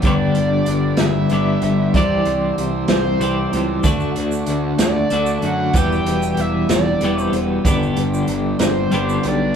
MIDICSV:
0, 0, Header, 1, 6, 480
1, 0, Start_track
1, 0, Tempo, 635122
1, 31, Time_signature, 6, 3, 24, 8
1, 7224, End_track
2, 0, Start_track
2, 0, Title_t, "Analog synth lead"
2, 0, Program_c, 0, 81
2, 49, Note_on_c, 0, 74, 111
2, 745, Note_on_c, 0, 76, 104
2, 757, Note_off_c, 0, 74, 0
2, 1468, Note_off_c, 0, 76, 0
2, 1476, Note_on_c, 0, 74, 90
2, 1923, Note_off_c, 0, 74, 0
2, 2189, Note_on_c, 0, 72, 107
2, 2699, Note_off_c, 0, 72, 0
2, 3641, Note_on_c, 0, 74, 91
2, 4085, Note_off_c, 0, 74, 0
2, 4125, Note_on_c, 0, 78, 99
2, 4360, Note_on_c, 0, 79, 123
2, 4372, Note_off_c, 0, 78, 0
2, 4840, Note_on_c, 0, 76, 100
2, 4851, Note_off_c, 0, 79, 0
2, 5075, Note_off_c, 0, 76, 0
2, 5088, Note_on_c, 0, 74, 90
2, 5459, Note_off_c, 0, 74, 0
2, 5459, Note_on_c, 0, 72, 90
2, 5589, Note_off_c, 0, 72, 0
2, 6520, Note_on_c, 0, 72, 97
2, 7011, Note_on_c, 0, 74, 97
2, 7022, Note_off_c, 0, 72, 0
2, 7224, Note_off_c, 0, 74, 0
2, 7224, End_track
3, 0, Start_track
3, 0, Title_t, "Transistor combo organ"
3, 0, Program_c, 1, 18
3, 0, Note_on_c, 1, 67, 57
3, 0, Note_on_c, 1, 83, 66
3, 36, Note_on_c, 1, 71, 56
3, 44, Note_on_c, 1, 74, 63
3, 1442, Note_off_c, 1, 67, 0
3, 1447, Note_off_c, 1, 83, 0
3, 1452, Note_on_c, 1, 67, 67
3, 1452, Note_on_c, 1, 84, 67
3, 1456, Note_on_c, 1, 72, 53
3, 1459, Note_off_c, 1, 71, 0
3, 1463, Note_off_c, 1, 74, 0
3, 1468, Note_on_c, 1, 76, 58
3, 2886, Note_off_c, 1, 67, 0
3, 2886, Note_off_c, 1, 84, 0
3, 2888, Note_off_c, 1, 72, 0
3, 2894, Note_off_c, 1, 76, 0
3, 2923, Note_on_c, 1, 74, 56
3, 2927, Note_on_c, 1, 66, 62
3, 2930, Note_on_c, 1, 81, 66
3, 2933, Note_on_c, 1, 69, 50
3, 4342, Note_off_c, 1, 74, 0
3, 4344, Note_off_c, 1, 66, 0
3, 4345, Note_off_c, 1, 81, 0
3, 4347, Note_off_c, 1, 69, 0
3, 4357, Note_on_c, 1, 67, 58
3, 4357, Note_on_c, 1, 83, 68
3, 4360, Note_on_c, 1, 76, 61
3, 5781, Note_off_c, 1, 76, 0
3, 5784, Note_on_c, 1, 74, 63
3, 7205, Note_off_c, 1, 67, 0
3, 7205, Note_off_c, 1, 83, 0
3, 7213, Note_off_c, 1, 74, 0
3, 7224, End_track
4, 0, Start_track
4, 0, Title_t, "Clean electric guitar"
4, 0, Program_c, 2, 27
4, 24, Note_on_c, 2, 43, 89
4, 33, Note_on_c, 2, 50, 98
4, 37, Note_on_c, 2, 55, 100
4, 43, Note_on_c, 2, 62, 89
4, 45, Note_on_c, 2, 59, 101
4, 52, Note_on_c, 2, 67, 97
4, 973, Note_off_c, 2, 43, 0
4, 978, Note_off_c, 2, 50, 0
4, 980, Note_off_c, 2, 55, 0
4, 982, Note_off_c, 2, 62, 0
4, 983, Note_off_c, 2, 59, 0
4, 987, Note_off_c, 2, 67, 0
4, 990, Note_on_c, 2, 43, 67
4, 995, Note_on_c, 2, 50, 77
4, 998, Note_on_c, 2, 55, 72
4, 1004, Note_on_c, 2, 59, 77
4, 1004, Note_on_c, 2, 62, 78
4, 1011, Note_on_c, 2, 67, 88
4, 1456, Note_off_c, 2, 43, 0
4, 1459, Note_off_c, 2, 50, 0
4, 1460, Note_off_c, 2, 55, 0
4, 1463, Note_off_c, 2, 59, 0
4, 1463, Note_off_c, 2, 62, 0
4, 1466, Note_off_c, 2, 67, 0
4, 1472, Note_on_c, 2, 48, 81
4, 1478, Note_on_c, 2, 52, 85
4, 1482, Note_on_c, 2, 55, 81
4, 1487, Note_on_c, 2, 60, 101
4, 1490, Note_on_c, 2, 67, 88
4, 2411, Note_off_c, 2, 48, 0
4, 2417, Note_off_c, 2, 52, 0
4, 2421, Note_on_c, 2, 48, 71
4, 2422, Note_off_c, 2, 55, 0
4, 2424, Note_off_c, 2, 60, 0
4, 2426, Note_off_c, 2, 67, 0
4, 2426, Note_on_c, 2, 52, 78
4, 2433, Note_on_c, 2, 55, 73
4, 2440, Note_on_c, 2, 60, 84
4, 2446, Note_on_c, 2, 67, 79
4, 2891, Note_off_c, 2, 48, 0
4, 2893, Note_off_c, 2, 52, 0
4, 2897, Note_off_c, 2, 55, 0
4, 2898, Note_on_c, 2, 50, 81
4, 2901, Note_off_c, 2, 60, 0
4, 2901, Note_on_c, 2, 57, 98
4, 2904, Note_off_c, 2, 67, 0
4, 2912, Note_on_c, 2, 62, 90
4, 2920, Note_on_c, 2, 66, 88
4, 3849, Note_off_c, 2, 50, 0
4, 3851, Note_off_c, 2, 57, 0
4, 3856, Note_off_c, 2, 62, 0
4, 3860, Note_off_c, 2, 66, 0
4, 3860, Note_on_c, 2, 50, 75
4, 3872, Note_on_c, 2, 57, 77
4, 3879, Note_on_c, 2, 62, 76
4, 3882, Note_on_c, 2, 66, 80
4, 4330, Note_off_c, 2, 50, 0
4, 4333, Note_on_c, 2, 40, 90
4, 4336, Note_off_c, 2, 57, 0
4, 4339, Note_on_c, 2, 47, 90
4, 4340, Note_off_c, 2, 62, 0
4, 4341, Note_off_c, 2, 66, 0
4, 4348, Note_on_c, 2, 52, 88
4, 4349, Note_on_c, 2, 55, 95
4, 4359, Note_on_c, 2, 59, 110
4, 4360, Note_on_c, 2, 67, 87
4, 5287, Note_off_c, 2, 40, 0
4, 5290, Note_off_c, 2, 47, 0
4, 5295, Note_off_c, 2, 52, 0
4, 5300, Note_off_c, 2, 59, 0
4, 5308, Note_on_c, 2, 40, 77
4, 5313, Note_on_c, 2, 47, 74
4, 5322, Note_off_c, 2, 55, 0
4, 5323, Note_on_c, 2, 52, 80
4, 5325, Note_on_c, 2, 55, 74
4, 5327, Note_off_c, 2, 67, 0
4, 5329, Note_on_c, 2, 59, 78
4, 5330, Note_on_c, 2, 67, 79
4, 5770, Note_off_c, 2, 40, 0
4, 5773, Note_on_c, 2, 43, 82
4, 5777, Note_off_c, 2, 47, 0
4, 5780, Note_off_c, 2, 59, 0
4, 5782, Note_off_c, 2, 52, 0
4, 5785, Note_on_c, 2, 50, 101
4, 5786, Note_off_c, 2, 55, 0
4, 5788, Note_on_c, 2, 55, 99
4, 5789, Note_on_c, 2, 59, 89
4, 5797, Note_on_c, 2, 62, 98
4, 5799, Note_off_c, 2, 67, 0
4, 5802, Note_on_c, 2, 67, 99
4, 6727, Note_off_c, 2, 43, 0
4, 6733, Note_off_c, 2, 50, 0
4, 6735, Note_off_c, 2, 55, 0
4, 6735, Note_off_c, 2, 59, 0
4, 6736, Note_on_c, 2, 43, 81
4, 6739, Note_off_c, 2, 62, 0
4, 6742, Note_off_c, 2, 67, 0
4, 6742, Note_on_c, 2, 50, 71
4, 6746, Note_on_c, 2, 55, 79
4, 6756, Note_on_c, 2, 59, 80
4, 6758, Note_on_c, 2, 62, 81
4, 6762, Note_on_c, 2, 67, 81
4, 7209, Note_off_c, 2, 43, 0
4, 7212, Note_off_c, 2, 50, 0
4, 7214, Note_off_c, 2, 55, 0
4, 7219, Note_off_c, 2, 59, 0
4, 7220, Note_off_c, 2, 62, 0
4, 7222, Note_off_c, 2, 67, 0
4, 7224, End_track
5, 0, Start_track
5, 0, Title_t, "Picked electric bass"
5, 0, Program_c, 3, 34
5, 29, Note_on_c, 3, 31, 92
5, 219, Note_off_c, 3, 31, 0
5, 277, Note_on_c, 3, 31, 86
5, 464, Note_off_c, 3, 31, 0
5, 509, Note_on_c, 3, 31, 90
5, 699, Note_off_c, 3, 31, 0
5, 753, Note_on_c, 3, 31, 88
5, 942, Note_off_c, 3, 31, 0
5, 992, Note_on_c, 3, 31, 78
5, 1181, Note_off_c, 3, 31, 0
5, 1225, Note_on_c, 3, 31, 92
5, 1417, Note_off_c, 3, 31, 0
5, 1465, Note_on_c, 3, 36, 89
5, 1657, Note_off_c, 3, 36, 0
5, 1709, Note_on_c, 3, 36, 82
5, 1899, Note_off_c, 3, 36, 0
5, 1950, Note_on_c, 3, 36, 83
5, 2140, Note_off_c, 3, 36, 0
5, 2189, Note_on_c, 3, 36, 91
5, 2379, Note_off_c, 3, 36, 0
5, 2421, Note_on_c, 3, 36, 78
5, 2614, Note_off_c, 3, 36, 0
5, 2671, Note_on_c, 3, 37, 89
5, 2860, Note_off_c, 3, 37, 0
5, 2900, Note_on_c, 3, 38, 95
5, 3093, Note_off_c, 3, 38, 0
5, 3155, Note_on_c, 3, 38, 82
5, 3343, Note_off_c, 3, 38, 0
5, 3385, Note_on_c, 3, 38, 78
5, 3576, Note_off_c, 3, 38, 0
5, 3621, Note_on_c, 3, 38, 83
5, 3814, Note_off_c, 3, 38, 0
5, 3868, Note_on_c, 3, 38, 86
5, 4058, Note_off_c, 3, 38, 0
5, 4104, Note_on_c, 3, 42, 81
5, 4296, Note_off_c, 3, 42, 0
5, 4336, Note_on_c, 3, 28, 90
5, 4531, Note_off_c, 3, 28, 0
5, 4582, Note_on_c, 3, 28, 94
5, 4775, Note_off_c, 3, 28, 0
5, 4820, Note_on_c, 3, 28, 75
5, 5013, Note_off_c, 3, 28, 0
5, 5059, Note_on_c, 3, 28, 101
5, 5252, Note_off_c, 3, 28, 0
5, 5298, Note_on_c, 3, 28, 73
5, 5492, Note_off_c, 3, 28, 0
5, 5533, Note_on_c, 3, 28, 88
5, 5729, Note_off_c, 3, 28, 0
5, 5783, Note_on_c, 3, 31, 97
5, 5975, Note_off_c, 3, 31, 0
5, 6021, Note_on_c, 3, 31, 87
5, 6214, Note_off_c, 3, 31, 0
5, 6260, Note_on_c, 3, 31, 82
5, 6453, Note_off_c, 3, 31, 0
5, 6499, Note_on_c, 3, 31, 93
5, 6693, Note_off_c, 3, 31, 0
5, 6745, Note_on_c, 3, 31, 72
5, 6936, Note_off_c, 3, 31, 0
5, 6992, Note_on_c, 3, 35, 97
5, 7181, Note_off_c, 3, 35, 0
5, 7224, End_track
6, 0, Start_track
6, 0, Title_t, "Drums"
6, 16, Note_on_c, 9, 42, 77
6, 25, Note_on_c, 9, 36, 103
6, 91, Note_off_c, 9, 42, 0
6, 100, Note_off_c, 9, 36, 0
6, 262, Note_on_c, 9, 42, 58
6, 338, Note_off_c, 9, 42, 0
6, 500, Note_on_c, 9, 42, 64
6, 575, Note_off_c, 9, 42, 0
6, 732, Note_on_c, 9, 42, 89
6, 736, Note_on_c, 9, 38, 105
6, 807, Note_off_c, 9, 42, 0
6, 811, Note_off_c, 9, 38, 0
6, 978, Note_on_c, 9, 42, 65
6, 1054, Note_off_c, 9, 42, 0
6, 1221, Note_on_c, 9, 42, 62
6, 1297, Note_off_c, 9, 42, 0
6, 1467, Note_on_c, 9, 36, 100
6, 1469, Note_on_c, 9, 42, 83
6, 1543, Note_off_c, 9, 36, 0
6, 1545, Note_off_c, 9, 42, 0
6, 1703, Note_on_c, 9, 42, 57
6, 1779, Note_off_c, 9, 42, 0
6, 1950, Note_on_c, 9, 42, 64
6, 2025, Note_off_c, 9, 42, 0
6, 2176, Note_on_c, 9, 42, 91
6, 2180, Note_on_c, 9, 38, 110
6, 2251, Note_off_c, 9, 42, 0
6, 2255, Note_off_c, 9, 38, 0
6, 2425, Note_on_c, 9, 42, 68
6, 2501, Note_off_c, 9, 42, 0
6, 2667, Note_on_c, 9, 42, 64
6, 2743, Note_off_c, 9, 42, 0
6, 2898, Note_on_c, 9, 82, 89
6, 2901, Note_on_c, 9, 42, 89
6, 2902, Note_on_c, 9, 36, 101
6, 2974, Note_off_c, 9, 82, 0
6, 2976, Note_off_c, 9, 42, 0
6, 2977, Note_off_c, 9, 36, 0
6, 3023, Note_on_c, 9, 82, 27
6, 3098, Note_off_c, 9, 82, 0
6, 3142, Note_on_c, 9, 42, 65
6, 3218, Note_off_c, 9, 42, 0
6, 3262, Note_on_c, 9, 82, 77
6, 3338, Note_off_c, 9, 82, 0
6, 3374, Note_on_c, 9, 42, 68
6, 3449, Note_off_c, 9, 42, 0
6, 3617, Note_on_c, 9, 42, 99
6, 3621, Note_on_c, 9, 38, 110
6, 3625, Note_on_c, 9, 82, 98
6, 3692, Note_off_c, 9, 42, 0
6, 3696, Note_off_c, 9, 38, 0
6, 3701, Note_off_c, 9, 82, 0
6, 3857, Note_on_c, 9, 42, 68
6, 3932, Note_off_c, 9, 42, 0
6, 3978, Note_on_c, 9, 82, 74
6, 4053, Note_off_c, 9, 82, 0
6, 4098, Note_on_c, 9, 42, 60
6, 4173, Note_off_c, 9, 42, 0
6, 4334, Note_on_c, 9, 42, 73
6, 4339, Note_on_c, 9, 36, 112
6, 4351, Note_on_c, 9, 82, 84
6, 4410, Note_off_c, 9, 42, 0
6, 4414, Note_off_c, 9, 36, 0
6, 4426, Note_off_c, 9, 82, 0
6, 4476, Note_on_c, 9, 82, 25
6, 4551, Note_off_c, 9, 82, 0
6, 4583, Note_on_c, 9, 42, 70
6, 4658, Note_off_c, 9, 42, 0
6, 4706, Note_on_c, 9, 82, 74
6, 4781, Note_off_c, 9, 82, 0
6, 4815, Note_on_c, 9, 42, 67
6, 4891, Note_off_c, 9, 42, 0
6, 5057, Note_on_c, 9, 42, 86
6, 5061, Note_on_c, 9, 38, 116
6, 5070, Note_on_c, 9, 82, 93
6, 5132, Note_off_c, 9, 42, 0
6, 5136, Note_off_c, 9, 38, 0
6, 5145, Note_off_c, 9, 82, 0
6, 5296, Note_on_c, 9, 42, 62
6, 5371, Note_off_c, 9, 42, 0
6, 5430, Note_on_c, 9, 82, 64
6, 5505, Note_off_c, 9, 82, 0
6, 5539, Note_on_c, 9, 42, 62
6, 5615, Note_off_c, 9, 42, 0
6, 5780, Note_on_c, 9, 36, 106
6, 5780, Note_on_c, 9, 42, 80
6, 5789, Note_on_c, 9, 82, 84
6, 5856, Note_off_c, 9, 36, 0
6, 5856, Note_off_c, 9, 42, 0
6, 5865, Note_off_c, 9, 82, 0
6, 5915, Note_on_c, 9, 82, 27
6, 5991, Note_off_c, 9, 82, 0
6, 6019, Note_on_c, 9, 42, 64
6, 6095, Note_off_c, 9, 42, 0
6, 6152, Note_on_c, 9, 82, 72
6, 6227, Note_off_c, 9, 82, 0
6, 6254, Note_on_c, 9, 42, 65
6, 6330, Note_off_c, 9, 42, 0
6, 6494, Note_on_c, 9, 42, 86
6, 6497, Note_on_c, 9, 38, 107
6, 6513, Note_on_c, 9, 82, 88
6, 6569, Note_off_c, 9, 42, 0
6, 6573, Note_off_c, 9, 38, 0
6, 6588, Note_off_c, 9, 82, 0
6, 6738, Note_on_c, 9, 42, 69
6, 6813, Note_off_c, 9, 42, 0
6, 6872, Note_on_c, 9, 82, 66
6, 6948, Note_off_c, 9, 82, 0
6, 6978, Note_on_c, 9, 42, 74
6, 7054, Note_off_c, 9, 42, 0
6, 7224, End_track
0, 0, End_of_file